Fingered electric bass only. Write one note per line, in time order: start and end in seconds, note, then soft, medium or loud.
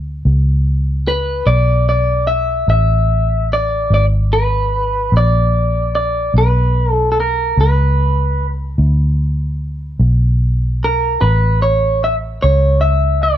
0.00 0.22 D2 medium
0.25 1.44 C#2 medium
1.46 2.66 B1 medium
2.68 3.87 A1 medium
3.90 5.09 G#1 medium
5.12 6.31 A#1 medium
6.34 7.53 B1 medium
7.57 8.75 C#2 medium
8.78 9.96 D2 medium
9.99 11.18 B1 medium
11.22 12.39 A1 medium
12.44 13.38 C#2 medium